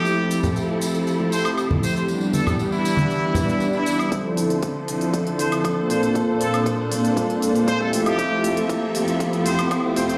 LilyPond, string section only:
\new Staff \with { instrumentName = "String section" } { \time 4/4 \key f \major \tempo 4 = 118 << { <e' a'>1 | b1 | <a' c''>1~ | <a' c''>2.~ <a' c''>8 <a' e''>8~ |
<a' e''>1 | } \\ { <f g'>1 | <e d'>1 | <d f>2.~ <d f>8 <bes, d'>8~ | <bes, d'>2.~ <bes, d'>8 <f g'>8~ |
<f g'>1 | } >> }